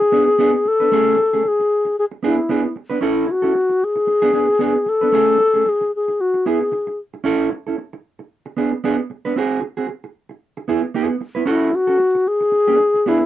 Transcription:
Already playing: G#4
0.01 muted clean electric guitar stroke
0.12 B3 D4 G#4
0.27 muted clean electric guitar stroke
0.39 B3 D4 G#4
0.53 muted clean electric guitar stroke
0.65 A4, muted clean electric guitar stroke
0.80 B3 D4 B4
0.92 A3 C#4 G#4
1.19 muted clean electric guitar stroke
1.33 A3 C#4 G#4
1.45 G#4, muted clean electric guitar stroke
1.60 muted clean electric guitar stroke
1.85 muted clean electric guitar stroke
1.99 G#4
2.12 muted clean electric guitar stroke
2.23 B3 D4 E4 G#4
2.38 muted clean electric guitar stroke
2.49 B3 D4 G#4
2.64 muted clean electric guitar stroke
2.76 muted clean electric guitar stroke
2.90 B3 D4 B4
3.01 C#4 E4 A4
3.28 F#4, muted clean electric guitar stroke
3.42 C#4 E4 A4
3.55 muted clean electric guitar stroke
3.69 muted clean electric guitar stroke
3.84 G#4
3.96 muted clean electric guitar stroke
4.07 muted clean electric guitar stroke
4.22 B3 D4 G#4
4.33 B3 D4 G#4
4.49 muted clean electric guitar stroke
4.59 B3 D4 G#4
4.75 muted clean electric guitar stroke
4.86 A4, muted clean electric guitar stroke
5.01 B3 D4 B4
5.12 A3 C#4 G#4
5.40 muted clean electric guitar stroke
5.54 A3 C#4 G#4
5.66 G#4, muted clean electric guitar stroke
5.81 muted clean electric guitar stroke
5.96 G#4
6.08 muted clean electric guitar stroke
6.21 F#4
6.34 muted clean electric guitar stroke
6.46 B3 E4 G#4
6.61 muted clean electric guitar stroke
6.72 muted clean electric guitar stroke
6.87 muted clean electric guitar stroke
7.14 muted clean electric guitar stroke
7.24 C#4 E4 A4
7.52 muted clean electric guitar stroke
7.67 C#4 E4 A4
7.78 muted clean electric guitar stroke
7.93 muted clean electric guitar stroke
8.19 muted clean electric guitar stroke
8.46 muted clean electric guitar stroke
8.57 B3 D4 G#4
8.73 muted clean electric guitar stroke
8.84 B3 D4 G#4
8.98 muted clean electric guitar stroke
9.10 muted clean electric guitar stroke
9.25 B3 D4 B4
9.36 C4 F#4 G#4
9.62 muted clean electric guitar stroke
9.77 C4 F#4 G#4
9.89 muted clean electric guitar stroke
10.04 muted clean electric guitar stroke
10.29 muted clean electric guitar stroke
10.57 muted clean electric guitar stroke
10.68 B3 E4 G#4
10.83 muted clean electric guitar stroke
10.94 B3 E4 G#4
11.09 muted clean electric guitar stroke
11.21 muted clean electric guitar stroke
11.35 B3 E4 B4
11.46 C#4 E4 F#4 A4
11.73 F#4, muted clean electric guitar stroke
11.87 C#4 F#4 A4
12.00 muted clean electric guitar stroke
12.15 muted clean electric guitar stroke
12.28 G#4
12.41 muted clean electric guitar stroke
12.52 muted clean electric guitar stroke
12.67 B3 D4 G#4
12.80 muted clean electric guitar stroke
12.94 muted clean electric guitar stroke
13.06 B3 D4 E4 G#4
13.21 muted clean electric guitar stroke

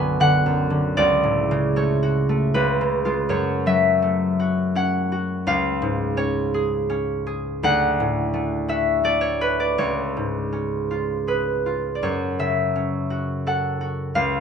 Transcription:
Already playing: B1 F#2 D3 B3 F#4 F#5 G#5 A5
0.20 D3 F#5
0.46 F#2
0.70 D3
0.97 C#2 D5
1.23 A2
1.51 C#3
1.76 A3 C#5
2.03 F#4
2.29 A3
2.54 C#2 B4
2.81 C#3
3.05 G#3 F4
3.29 F#2 C#5
3.66 F#3 E5
4.02 A3
4.40 F#4
4.75 C#4 F#5
5.12 F#4
5.47 C#2 F5
5.82 G#2
6.17 C#4 C#5
6.54 G#4
6.90 C#4
7.27 G#4
7.63 D2 F#5
8.00 A2
8.34 A3
8.68 F#4 E5
9.04 A3 D5
9.21 C#5
9.41 F#4 B4
9.60 D5
9.78 C#2 C#5
10.17 G#2
10.52 C#4
10.91 F4
11.27 G#4 B4
11.66 F4
11.95 D5
12.03 F#2 C#5
12.39 C#3 E5
12.76 C#4
13.10 F#4
13.47 A4 F#5
13.81 F#4
14.15 C#2 F5

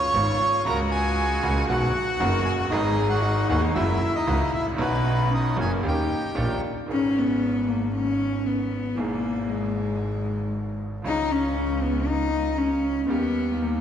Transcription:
Already playing: F4 C#5 C#6
0.14 G#1 G#2 C#3 G#3 B3 F4
0.65 C#2 C#3 G#3 A#3 F#4 A#5
0.69 F#4 A#4
0.91 G#4 G#5
1.43 C#2 C#3 G#3 A#3 F#4
1.68 B1 B2 D#3 F#3 B3 F#4 F#5
1.72 F#4
2.20 F#1 F#2 D#3 F#3 B3 F#4
2.45 F#1 G#4 G#5
2.52 F1
2.59 F#1 F#4 F#5
2.65 G1
2.70 G#1 G#2 D#3 G#3 B3 D#4 G#4 D#5
2.74 G#4
3.10 F#4 F#5
3.22 D#4
3.49 D#1 D#2 D#3 G#3 B3 F#4 G#4 F#5
3.75 F#1 F#2 C#3 F#3 G#3 A#3 E4 F#4 E5
4.15 D#4 D#5
4.27 C#2 C#3 G#3 A#3 F#4
4.54 A1 E4 E5
4.59 G#1
4.66 A1
4.72 A#1
4.76 B1 B2 D#3 B3 C#4 D#4
4.81 B3 F#4 B4
5.31 C#4 D#4 D#5
5.57 F#1 F#2 D#3 B3 C#4 F#4
5.61 G#4 G#5
5.83 D#2 D#3 A#3 C#4 D#4 G4
5.88 G4 G5
6.35 A#1 A#2 D#3 A#3 C#4 G4
6.86 G#1 G#2 D#3 B3 G#4 A#4
6.92 C#4
7.19 B3
7.68 A#3
7.95 C#4
8.46 B3
8.95 G#1 G#2 B2 E3 G#3 A#3
8.99 G#4
9.49 G#3
11.02 C#2 C#3 F3 G#3 C#4
11.06 D#4 G#4
11.32 C#4
11.83 B3
12.07 D#4
12.58 C#4
13.07 D#2 D#3 G3 B3 G4 A#4
13.61 A#3

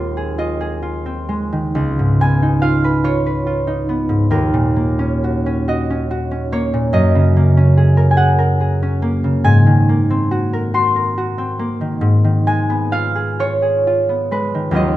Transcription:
Already playing: D#2 D#3 G#3 A#3 C4 F4 A#4 C5 D#5
0.17 G#4
0.38 F4 D#5
0.61 G#4
0.82 F4
1.06 C4
1.29 G#3
1.52 D#3
1.75 C#2
1.99 G#2
2.21 B3 G#5
2.42 D#4
2.62 F4 F5
2.84 B4
3.04 F4 C#5
3.26 B4
3.46 F4
3.67 D#4
3.89 B3
4.09 G#2
4.30 D#2 A#4
4.54 A#2
4.76 A#3
4.99 C#4
5.24 F#4
5.46 C#4
5.68 F#4 D#5
5.90 C#4
6.11 F#4
6.31 C#4
6.52 A#3 C#5
6.74 A#2
6.93 F#2 D#5
7.15 C#3
7.36 A#3
7.57 C#4
7.77 G#4
7.97 A#4
8.11 G#5
8.17 G#4 F#5
8.38 A#4
8.61 G#4
8.82 C#4
9.02 A#3
9.24 C#3
9.44 G#2 G#5
9.66 D#3
9.89 A#3
10.10 C4
10.31 F#4
10.53 A#4
10.74 F#4 C6
10.96 A#4
11.18 F#4
11.38 C4
11.59 A#3
11.81 D#3
12.01 G#2
12.24 D#3
12.47 G#3 G#5
12.70 B3
12.92 F4 F5
13.15 G#4
13.39 F4 C#5
13.62 G#4
13.87 F4
14.09 B3
14.31 G#3 B4
14.54 D#3
14.71 D#2 F#3 C#4 F4
14.76 D#5

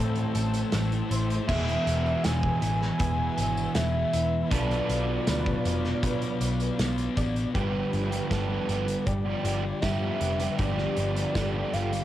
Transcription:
Already playing: A2 A3 C4 E4 A4 C5 G5 A5 E6
0.00 E3 A3
0.16 closed hi-hat
0.35 A1 A4, closed hi-hat, tambourine
0.54 closed hi-hat, tambourine
0.72 A1 A2 E3 A3, snare, closed hi-hat, tambourine
0.92 closed hi-hat
1.10 A1 E3 A3 C5, closed hi-hat, tambourine
1.30 closed hi-hat
1.47 E1 E2 B2 E3 G#3 B3 E4 G#4 B4 E5 G#5, kick, crash
1.69 closed hi-hat
1.87 E1, closed hi-hat, tambourine
2.06 tambourine
2.24 E1 G#4 G#5, snare, closed hi-hat, tambourine
2.43 kick
2.61 A1 B2 E3, closed hi-hat, tambourine
2.82 snare
2.99 E1 E2 B2 E3 G#4 G#5, kick, closed hi-hat
3.38 G#1 G#4, closed hi-hat, tambourine
3.57 tambourine
3.74 E1 E2 B2 E3 E5, snare, closed hi-hat, tambourine
3.92 E5
4.13 E1 B2 E3 B4, closed hi-hat, tambourine
4.50 B1 B2 F#3 B3 D4 F4 A4 B4 D5 F5 D6, kick, closed hi-hat, tambourine
4.71 closed hi-hat
4.89 B1, closed hi-hat, tambourine
5.27 D2 B4, snare, closed hi-hat, tambourine
5.46 kick, tambourine
5.64 F1 F#3 B3, closed hi-hat, tambourine
5.85 snare, tambourine
6.02 B2 F#3 B3 B4, kick, closed hi-hat, tambourine
6.22 closed hi-hat
6.41 B1 B4, closed hi-hat, tambourine
6.60 closed hi-hat, tambourine
6.78 B1 B2 F#3 B3, snare, closed hi-hat, tambourine
6.98 closed hi-hat, tambourine
7.16 A1 F#3 B3 D5, kick, closed hi-hat, tambourine
7.36 closed hi-hat, tambourine
7.54 G1 G2 D3 F3 G3 B3 F4 G4 B4 D5 B5, kick, closed hi-hat
7.92 G1 G2 D3 G3, closed hi-hat
8.10 D3 G3, closed hi-hat
8.29 G1 G2 D3 F3 G3 B3 G4 A4 B4, kick, snare, closed hi-hat, tambourine
8.48 D3 G3
8.68 G1 F3 G3 B3 G4, closed hi-hat
8.86 D3 G3, muted overdriven electric guitar stroke, closed hi-hat
9.06 G1 G4 D5, kick, closed hi-hat
9.24 D3 F3 G3 B3 G4
9.44 G1 G2 D3 F3 G3 B3 G4, closed hi-hat
9.63 D3 G3, muted overdriven electric guitar stroke
9.81 G2 D3 F3 G3 B3 E5, kick, snare, closed hi-hat, tambourine
9.85 G4
10.19 F1 G2 D3 F3 G3 B3 G4 B4, closed hi-hat
10.39 D3 G3 B3 G4, closed hi-hat
10.43 F3
10.57 G1 G2 D3 F3 G3 B3 G4 D5, kick, closed hi-hat
10.61 G4
10.78 snare
10.96 G1 G2 D3 G3, closed hi-hat
11.15 D3 G3, closed hi-hat
11.35 G1 G2 D3 F3 G3 B3 G4 A4, kick, snare, closed hi-hat, tambourine
11.54 D3 G3
11.73 G1 F3 G3 B3 G4 F5, closed hi-hat
11.92 D3 G3, muted overdriven electric guitar stroke, closed hi-hat

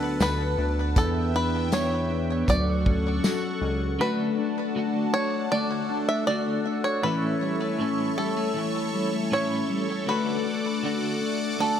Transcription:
Already playing: D2 F#3 B3 D4 A4 B4 F#5 A5
0.20 D2 A4 B4, snare, closed hi-hat, tambourine
0.58 D2 D4
0.96 E2 B3 A4 E5 G5, kick, closed hi-hat
1.34 D4 B4
1.72 B3 C#5, snare, closed hi-hat, tambourine
2.10 D4
2.48 D2 F#3 A4 D5 F#5 C#6, kick, closed hi-hat
2.85 C#4, kick
3.23 F#4, snare, closed hi-hat, tambourine
3.61 C#2 C#4
3.99 D3 A3 D4 F#4 A4 B4 F#5 A5
4.37 D4 F#4
4.41 A3
4.75 D3 A3 D4 F#4
5.13 D4 F#4 C#5
5.18 A3
5.51 D3 A3 D4 D5
5.56 F#4
5.89 D4 F#4
5.93 A3
6.09 E5
6.27 D3 A3 D4 F#4 D5
6.65 D4 F#4
6.69 A3
6.84 C#5
7.02 A2 E3 A3 C#4 E4 B4 C#5 E5 C#6
7.40 G3 C#4 E4
7.45 A3
7.61 A3
7.79 A2 E3 A3 C#4 E4
8.16 G3 C#4 E4 A4
8.20 A3
8.37 A3
8.54 E3 A3 C#4
8.59 E4
8.93 G3 C#4 E4
8.97 A3
9.13 A3
9.31 A2 E3 A3 C#4 E4 C#5
9.68 G3 C#4 E4
9.72 A3
9.88 A3
10.06 D3 A3 D4 F#4 B4 D5 F#5 D6
10.44 D4 F#4
10.49 A3
10.83 D3 A3 D4 F#4
11.20 D4 F#4
11.25 A3
11.59 D3 A3 D4 A4
11.63 F#4

